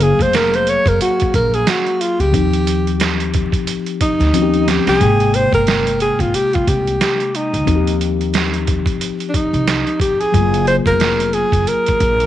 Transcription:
Already playing: F#1 F#3 A#3 G#4 F5
0.00 G#4, closed hi-hat
0.19 F1 C5, kick, closed hi-hat
0.33 A#4, snare, closed hi-hat
0.54 C5, closed hi-hat
0.67 C#5, closed hi-hat
0.86 F#1 A#4, kick, closed hi-hat
1.01 F#4, closed hi-hat
1.20 muted upright bass stroke, kick, closed hi-hat
1.34 A#1 A#4, kick, closed hi-hat
1.54 G#4, closed hi-hat
1.67 F#4, snare, closed hi-hat
1.87 closed hi-hat
2.01 F4, closed hi-hat
2.20 C#2 G4, closed hi-hat
2.32 D#2 F3 C4 D#4 G4, kick, closed hi-hat
2.53 closed hi-hat
2.67 closed hi-hat
2.87 closed hi-hat
3.00 snare, closed hi-hat
3.20 closed hi-hat
3.34 kick, closed hi-hat
3.52 kick, closed hi-hat
3.67 closed hi-hat
3.86 closed hi-hat
4.01 D#4, kick, closed hi-hat
4.20 D2, snare, closed hi-hat
4.34 D#2 F3 C4 C#4 F#4, closed hi-hat
4.42 G4
4.54 closed hi-hat
4.68 G4, snare, closed hi-hat
4.87 C2 G#4, snare, closed hi-hat
4.99 G#1 B2 G#3 A#3 G5, kick, closed hi-hat
5.06 C3
5.20 closed hi-hat
5.34 C5, closed hi-hat
5.53 G1 A#4, kick, closed hi-hat
5.67 snare, closed hi-hat
5.87 closed hi-hat
6.00 G#4, closed hi-hat
6.19 G#1 F4, kick, closed hi-hat
6.34 G4, closed hi-hat
6.53 F4, muted upright bass stroke, kick, closed hi-hat
6.67 C2 G4, kick, closed hi-hat
6.87 closed hi-hat
7.01 G4, snare, closed hi-hat
7.20 closed hi-hat
7.35 D#4, closed hi-hat
7.53 D2, closed hi-hat
7.65 D#2 F3 C4 D#4 F#4, kick, closed hi-hat
7.75 G4
7.87 closed hi-hat
8.01 closed hi-hat
8.21 closed hi-hat
8.34 snare, closed hi-hat
8.54 closed hi-hat
8.67 kick, closed hi-hat
8.86 kick, closed hi-hat
9.01 closed hi-hat
9.20 closed hi-hat
9.30 D4
9.34 D#4, kick, closed hi-hat
9.53 C2, closed hi-hat
9.67 snare, closed hi-hat
9.87 closed hi-hat
10.00 G4, kick, closed hi-hat
10.20 G#4, closed hi-hat
10.32 F#1 F#3 G#3 F4 G#4, kick, closed hi-hat
10.40 A#3
10.54 closed hi-hat
10.67 C5, closed hi-hat
10.86 F1 A#4, kick, closed hi-hat
11.00 snare, closed hi-hat
11.20 closed hi-hat
11.33 G#4, closed hi-hat
11.52 F#1, kick, closed hi-hat
11.67 A#4, closed hi-hat
11.86 muted upright bass stroke, kick, closed hi-hat
12.00 A#1, kick, closed hi-hat
12.20 closed hi-hat

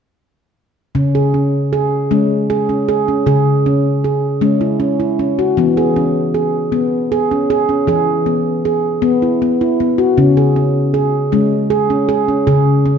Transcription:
0.95 C#3 C#4
1.15 G#4
1.34 C#4
1.73 G#4
2.11 G#3 C#4
2.50 G#4
2.69 C#4
2.89 G#4
3.08 C#4
3.26 C#3 G#4
3.66 C#4
4.04 G#4
4.41 G#3 C#4
4.61 E4
4.80 C#4
5.00 E4
5.19 C#4
5.39 F#4
5.57 E3 B3
5.77 G#4
5.96 C#4
6.34 G#4
6.72 B3
7.12 G#4
7.31 C#4
7.50 G#4
7.69 C#4
7.87 E3 G#4
8.26 B3
8.65 G#4
9.02 B3
9.22 E4
9.42 B3
9.61 E4
9.80 B3
9.98 F#4
10.18 C#3 C#4
10.37 G#4
10.56 C#4
10.94 G#4
11.32 G#3 C#4
11.70 G#4
11.90 C#4
12.09 G#4
12.28 C#4
12.47 C#3 G#4
12.86 C#4

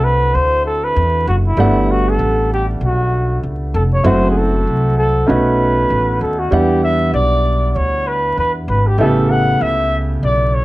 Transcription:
Already playing: C2 A3 C4 D4 E4 F#4
0.04 B4
0.34 D2 C5
0.66 A4
0.84 B4
0.96 E2
1.27 F#1 F#4
1.47 E4
1.57 G1 G3 A3 B3 D4 F#5
1.91 F#4
2.09 A4
2.19 A1
2.54 G4
2.81 B1 F#4
3.43 C#2
3.74 F1 A4
3.94 C#5
4.04 F#1 F#3 A3 C4 E4 F#4 C5
4.30 G#4
4.37 A4
4.67 C2
4.98 A4
5.27 B1 A3 B3 C#4 D#4 F#4 B4
5.90 A1
6.21 D#2 A4
6.39 F#4
6.51 E2 G3 B3 D4 E4 G4 F#5
6.83 E5
7.13 B1 D5
7.71 D5
7.76 D2 C#5
8.07 B4
8.37 E2 B4
8.68 G#1 B4
8.87 G4
8.98 A1 C#3 A3 B3 E4 G4 A4
9.31 F#5
9.61 C#2 E5
10.23 B1 D5
10.54 C#5

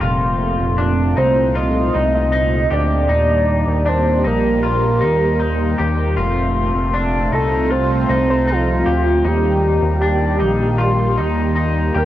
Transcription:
Already playing: A#2
0.01 F1 A3 C4 F4
0.60 F1
0.78 D4
1.17 C2 D#4 C5
1.55 F4 D#5
1.94 C2 D#4
2.15 D#5
2.32 D#4
2.71 D2 G4 D5
3.09 D#2 G3 A#3 D#4 G4
3.67 D#2
3.86 D4 C5
4.24 A#1 D#4 A#4
4.63 F4 A#4
5.01 D#2 D#4
5.40 D#4
5.78 D#2 G4
6.17 F1 A3 C4 F4
6.75 F1
6.94 D4
7.32 C2 D#4 A4
7.71 F4 C5
8.09 C2 D#4
8.30 C5
8.47 D#4 F4
8.85 D2 G4
9.24 D#2 D#3 G3 A#3 D#4 G4
9.82 D#2
10.02 D4
10.40 A#1 D#4
10.78 F4
11.18 D#2 D#4
11.56 D#4
11.94 D#2 G4 A#4

